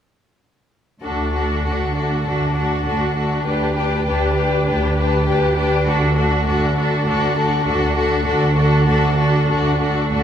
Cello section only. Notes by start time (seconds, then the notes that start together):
1.03 D2
1.64 D2
2.25 D2
2.85 D2
3.46 D2
4.06 D2
4.67 D2
5.27 D2
5.86 D2
6.46 D2
7.06 D2
7.67 D2
8.26 D2
8.88 D2
9.48 D2
10.12 D2